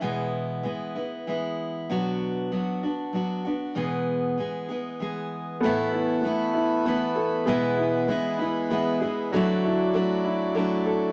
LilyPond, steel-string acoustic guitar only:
\new Staff \with { instrumentName = "Steel-string acoustic guitar" } { \time 3/4 \key e \mixolydian \tempo 4 = 97 <e, b, e gis b e'>4 <e gis b e'>8 <e gis b e'>8 <e gis b e'>4 | <b, fis b d' fis'>4 <fis b d' fis'>8 <b d' fis'>8 <fis b d' fis'>8 <b d' fis'>8 | <e, b, e gis b gis'>4 <e gis b gis'>8 <e gis b gis'>8 <e gis b gis'>4 | <a, e a b e'>4 <e a b e'>4 <e a b e'>4 |
<e, b, e gis b e'>4 <e gis b e'>8 <e gis b e'>8 <e gis b e'>8 <e gis b e'>8 | <d fis a d' e'>4 <fis a d' e'>4 <fis a d' e'>4 | }